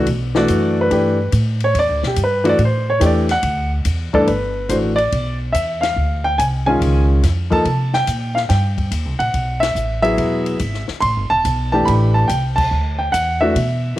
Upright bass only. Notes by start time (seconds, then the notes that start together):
0.06 B1
0.49 F#2
0.91 G2
1.32 A2
1.74 E2
1.89 D2
2.03 B1
2.17 G2
2.58 A2
3.01 E2
3.43 D2
3.85 E2
4.14 muted upright bass stroke
4.27 G1
4.69 A1
5.12 B1
5.54 E2
5.96 D2
6.39 C2
6.81 C#2
7.23 F2
7.65 C3
8.08 A#2
8.50 G2
8.91 D#2
9.05 C2
9.19 A#1
9.34 B1
9.75 A1
10.18 E1
10.60 G#1
10.89 muted upright bass stroke
11.02 A1
11.16 G1
11.31 E1
11.45 B1
11.87 A1
12.29 C2
12.71 D2
13.14 E2
13.55 B2